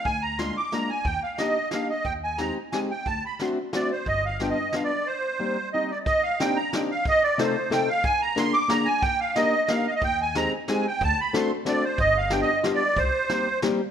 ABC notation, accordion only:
X:1
M:3/4
L:1/16
Q:1/4=181
K:Cm
V:1 name="Accordion"
a2 b2 c'2 d'2 b2 a2 | g2 f2 e4 f2 e2 | g2 a2 b2 z2 a2 g2 | =a2 =b2 c'2 z2 d2 c2 |
e2 f2 g e3 f d3 | c8 e2 d2 | e2 f2 g2 b2 g2 f2 | e2 d2 c4 g2 f2 |
a2 b2 c'2 d'2 b2 a2 | g2 f2 e4 f2 e/2 f/2 e | g2 a2 b2 z2 a2 g2 | =a2 =b2 c'2 z2 d2 c2 |
e2 f2 g e3 f d3 | c8 z4 |]